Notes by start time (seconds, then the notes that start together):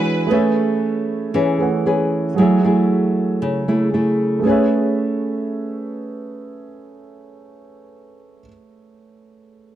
Already playing: E3 G#3 D4 F#4 G#4 B4 D5 F#5
0.27 A3 G#4 B4
0.31 C#4 G#4 B4 C#5 E5
1.34 E3 C#4 G#4 B4
1.59 A3 G#4 B4 C#5 F#5
1.86 C#4 G#4 B4
2.34 F#3 A3 G#4
2.39 E4 G#4 C#5 E5
2.64 A3 E4 G#4
3.42 C#3
3.68 A3 E4 G#4
3.94 A3 E4 G#4
4.39 A3 G#4
4.45 C#4 G#4 B4 C#5
4.51 E5